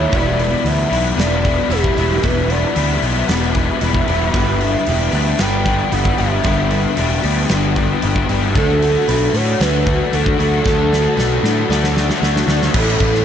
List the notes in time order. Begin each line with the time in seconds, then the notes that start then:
Already playing: E3 A3 C#4 E4 A4 B4 C#5
0.11 E1 E2 B2 E3 G3 B3 D4 E4 G4 B4 D5, kick, open hi-hat
0.38 E3 G3 B3 E4, open hi-hat
0.64 D2 E3 G3 B3 D4 E4 G4 D5 E5, open hi-hat
0.89 B1 E3 G3 B3 E4 G4 D5, open hi-hat
0.94 D4
1.16 E1 E2 B2 E3 G3 B3 D4 E4 G4 B4 D5, snare, open hi-hat
1.43 E3 G3 B3 E4 G4 D5, kick, open hi-hat
1.70 E1 E3 G3 B3 E4 G4, open hi-hat
1.74 E4
1.84 kick
1.96 E1 E3 G3 B3 D4 E4 G4 D5, open hi-hat
2.22 E1 E2 B2 E3 G3 B3 D4 G4 B4 D5, kick, open hi-hat
2.26 E4
2.49 E3 G3 B3 E4 D5, open hi-hat
2.75 D2 E3 G3 B3 D4 E4 G4 D5, open hi-hat
3.01 B1 E3 G3 B3 D4 E4 G4 D5, open hi-hat
3.28 E1 E2 B2 E3 G3 B3 D4 E4 G4 B4 D5, snare, open hi-hat
3.54 E3 G3 B3 D4 E4 G4 D5, kick, open hi-hat
3.80 E1 E3 G3 B3 E4, open hi-hat
3.94 kick
4.07 E1 E3 G3 B3 D4 E4 G4 D5 E5, open hi-hat
4.33 G1 G2 D3 G3 B3 D4 E4 G4 B4 D5, kick, open hi-hat
4.59 G3 B3 D4 G4, open hi-hat
4.85 E1 G3 B3 D4 E4 G4 B4 D5, open hi-hat
5.11 D2 G3 B3 D4 G4 B4 D5, open hi-hat
5.38 G1 G2 D3 G3 B3 D4 E4 G4 B4 D5 G5, snare, open hi-hat
5.64 G3 B3 D4 E4 G4 B4 D5 G5, kick, open hi-hat
5.91 G1 G3 B3 D4 E4 G4 F#5, open hi-hat
6.05 kick
6.17 G1 G3 B3 D4 E4 G4 B4 D5 E5, open hi-hat
6.43 G1 G2 D3 G3 B3 D4 E4 G4 B4, kick, open hi-hat
6.47 D5
6.69 G3 B3 D4 G4, open hi-hat
6.96 E1 G3 B3 D4 E4 G4 B4 D5, open hi-hat
7.22 D2 G3 B3 D4 E4 G4 B4 D5, open hi-hat
7.48 G1 G2 D3 G3 B3 D4 E4 B4 D5, snare, open hi-hat
7.53 G4
7.75 G3 B3 D4 E4 G4 B4 D5, kick, open hi-hat
8.02 G1 G3 B3 D4 E4 G4, open hi-hat
8.16 kick
8.28 G1 G3 B3 D4 E4 G4 B4 D5, open hi-hat
8.54 D2 D3 F#3 A3 D4 F#4 A4 D5, kick, open hi-hat
8.58 D4 F#4
8.81 A3 D4 F#4, open hi-hat
9.07 B1 D3 A3 D4 F#4 B4 D5, open hi-hat
9.33 A2 A3 D4 F#4 C#5 D5, open hi-hat
9.60 D2 D3 A3 D4 F#4 A4 B4 D5, snare, open hi-hat
9.86 A3 D4 F#4 D5, kick, open hi-hat
10.12 D2 D3 A3 D4 F#4 A4, open hi-hat
10.26 kick
10.38 D2 A3 D4 F#4 A4 D5, open hi-hat
10.64 D2 D3 F#3 A3 D4 F#4 A4 D5, kick, snare
10.89 A3 D4 F#4, snare
11.16 B1 D3 A3 D4 F#4 B4 D5, snare
11.43 A2 A3 D4 F#4 D5, snare
11.68 D2 D3 A3 D4 F#4 A4 D5, snare
11.84 snare
11.94 A3 D4 F#4 D5, snare
12.10 snare
12.21 D2 D3 A3 D4 F#4, snare
12.36 snare
12.47 D2 A3 D4 F#4 D5, snare
12.62 snare
12.73 A1 A2 E3 A3 B3 C#4 E4 A4 B4 C#5, kick, crash
13.00 A1, kick, crash
13.14 snare